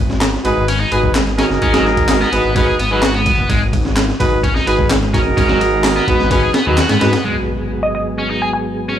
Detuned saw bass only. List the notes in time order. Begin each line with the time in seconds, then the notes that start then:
Already playing: G#1
0.45 G#1
0.57 G#1
0.92 G#1
1.50 F#1
1.62 G#1
2.32 G#1
2.44 G#1
2.79 G#1
3.38 F#1
3.49 G#1
4.20 G#1
4.32 G#1
4.67 G#1
5.25 F#1
5.37 G#1
6.08 G#1
6.20 G#1
6.67 D#2
6.90 G#2
7.02 G#2